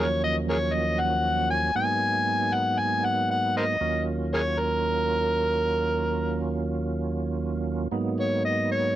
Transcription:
0.00 1.71 D#2 medium
0.00 1.72 F3 medium
0.00 1.72 F#3 medium
0.00 1.72 A#3 medium
0.00 1.72 C#4 medium
0.00 0.21 C#5 medium
0.24 0.35 D#5 medium
0.49 0.57 G#4 medium
0.49 0.56 A#4 medium
0.49 0.76 C#5 medium
0.74 1.01 D#5 medium
1.00 1.50 F#5 loud
1.50 1.74 G#5 loud
1.75 3.77 G#2 medium
1.75 3.77 F#3 medium
1.75 3.77 A#3 medium
1.75 3.77 B3 medium
1.75 3.77 D#4 medium
1.75 2.55 G#5 loud
2.53 2.80 F#5 medium
2.79 3.06 G#5 medium
3.05 3.30 F#5 medium
3.31 3.54 F#5 medium
3.57 3.64 A#4 medium
3.57 3.64 C5 medium
3.57 4.04 D#5 medium
3.81 7.88 D#2 medium
3.81 7.88 F#3 medium
3.81 7.88 A#3 medium
3.81 7.88 C#4 medium
3.81 7.88 F4 medium
4.34 4.41 G#4 medium
4.34 4.41 A#4 medium
4.34 4.61 C#5 loud
4.59 6.64 A#4 loud
7.91 8.96 G#2 medium
7.91 8.96 F#3 medium
7.91 8.96 A#3 medium
7.91 8.96 B3 medium
7.91 8.96 D#4 medium
8.20 8.43 C#5 medium
8.45 8.68 D#5 medium
8.71 8.96 C#5 medium

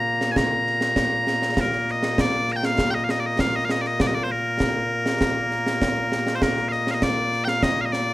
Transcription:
0.00 8.14 A#2 medium
0.00 8.14 A#3 medium
0.00 0.32 A#5 loud
0.21 snare medium
0.32 0.37 G#5 medium
0.36 1.61 A#5 loud
0.36 concert bass drum medium
0.36 snare medium
0.67 snare soft
0.81 snare medium
0.96 concert bass drum soft
0.96 snare medium
1.27 snare medium
1.42 snare medium
1.57 1.91 A#4 medium
1.57 concert bass drum medium
1.57 snare loud
1.72 snare soft
1.88 2.20 D#5 medium
1.88 snare soft
2.03 snare medium
2.18 2.52 D5 medium
2.18 concert bass drum medium
2.18 snare loud
2.48 2.56 A#5 medium
2.48 snare soft
2.56 2.65 G5 medium
2.63 2.91 F5 medium
2.63 snare medium
2.78 concert bass drum medium
2.78 snare loud
2.90 3.04 D#5 medium
2.90 2.94 G5 medium
3.04 3.11 F5 medium
3.09 3.20 D#5 medium
3.09 snare medium
3.20 3.26 D5 medium
3.26 3.40 D#5 medium
3.39 3.56 F5 medium
3.39 concert bass drum medium
3.39 snare loud
3.56 3.65 D#5 medium
3.65 3.71 F5 medium
3.69 3.81 D#5 medium
3.69 snare medium
3.81 3.87 D5 medium
3.81 snare soft
3.87 4.01 D#5 medium
4.00 4.07 D5 medium
4.00 concert bass drum medium
4.00 snare loud
4.07 4.14 D#5 medium
4.14 4.24 D5 medium
4.24 4.31 C5 medium
4.31 6.35 A#4 medium
4.60 concert bass drum medium
4.60 snare loud
5.06 snare medium
5.21 concert bass drum medium
5.21 snare loud
5.51 snare soft
5.67 snare medium
5.82 concert bass drum medium
5.82 snare medium
6.12 snare medium
6.27 snare medium
6.35 6.42 C5 medium
6.42 6.69 A#4 medium
6.42 concert bass drum medium
6.42 snare loud
6.57 snare soft
6.69 6.91 D#5 medium
6.69 6.72 F5 medium
6.69 snare soft
6.87 snare medium
6.91 7.03 D#5 medium
6.91 6.94 F5 medium
7.02 7.44 D5 medium
7.02 concert bass drum medium
7.02 snare loud
7.32 snare soft
7.44 7.63 F5 medium
7.44 7.48 G5 medium
7.44 snare medium
7.63 7.81 D#5 loud
7.63 concert bass drum medium
7.63 snare medium
7.81 7.86 F5 medium
7.86 7.92 D#5 medium
7.92 8.14 D5 medium
7.92 snare medium

